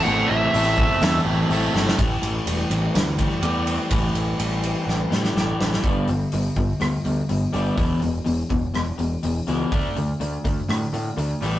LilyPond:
<<
  \new Staff \with { instrumentName = "Lead electric guitar" } { \time 4/4 \key a \dorian \tempo 4 = 124 fis''8 e''2 r4. | r1 | r1 | r1 |
r1 | r1 | }
  \new Staff \with { instrumentName = "Distorted electric guitar" } { \time 4/4 \key a \dorian <a, e a c' e' a'>8 <a c' e' a'>8 <a c' e' a'>4 <a, e a c' e' a'>8 <a c' e' a'>8 <a c' e' a'>8 <a c' e' a'>8 | r1 | r1 | r1 |
r1 | r1 | }
  \new Staff \with { instrumentName = "Clean electric guitar" } { \clef bass \time 4/4 \key a \dorian r1 | a,8 e8 g8 c'8 e8 g8 g'8 c'8 | a,8 e8 g8 c'8 e8 g8 g'8 c'8 | <g b d'>8 <g b>8 <g b>8 <g b>8 <g b>8 <g b>8 <g b>8 <g b d'>8 |
<e, b, e>8 <e, b,>8 <e, b,>8 <e, b,>8 <e, b,>8 <e, b,>8 <e, b,>8 <e, b, e>8 | <d a d'>8 <d a>8 <d a>8 <d a>8 <d a>8 <d a>8 <d a>8 <a, e g>8 | }
  \new Staff \with { instrumentName = "Overdriven electric guitar" } { \clef bass \time 4/4 \key a \dorian <a, e a c' e' a'>4 <a c' e' a'>4 <a, e a c' e' a'>8 <a c' e' a'>8 <a c' e' a'>8 <a c' e' a'>8 | <a, e a>2~ <a, e a>8 <a, e a>8 <a, e a>4 | <a, e a>2~ <a, e a>8 <a, e a>8 <a, e a>4 | <g, d g>8 <g, d>8 <g, d>8 <g, d>8 <g, d>8 <g, d>8 <g, d>8 <g, d g>8 |
<e, b, e>8 <e, b,>8 <e, b,>8 <e, b,>8 <e, b,>8 <e, b,>8 <e, b,>8 <e, b, e>8 | <d a d'>8 <d a>8 <d a>8 <d a>8 <d a>8 <d a>8 <d a>8 <a, e a>8 | }
  \new Staff \with { instrumentName = "Picked electric bass" } { \clef bass \time 4/4 \key a \dorian a,,8 a,,8 a,,4 e,8 a,,8 a,,8 g,,8 | a,,8 a,,8 e,,8 a,,8 d,4 e,4 | a,,8 a,,8 a,,4 a,,8 a,8 a,,8 a,,8 | g,,8 g,,8 g,,8 g,,8 d,8 d,8 g,,8 g,,8 |
e,,8 e,,8 e,,8 e,,8 e,,8 e,,8 e,,8 cis,8 | d,8 d,8 d,8 d,8 a,8 a,8 d,8 a,,8 | }
  \new DrumStaff \with { instrumentName = "Drums" } \drummode { \time 4/4 r4 hho8 bd8 <hho sn>4 hho8 sn16 sn16 | <bd cymr>8 cymr8 cymr8 cymr8 <cymr sn>8 <bd cymr>8 cymr8 cymr8 | <bd cymr>8 cymr8 cymr8 cymr8 sn8 sn16 sn16 sn8 sn16 sn16 | <hho bd>8 hho8 hho8 <hho bd>8 <hho ss>8 hho8 hho8 hho8 |
<hho bd>8 hho8 hho8 <hho bd>8 <hho ss>8 hho8 hho8 hho8 | <hho bd>8 hho8 hho8 <hho bd>8 <hho ss>8 hho8 hho8 hho8 | }
>>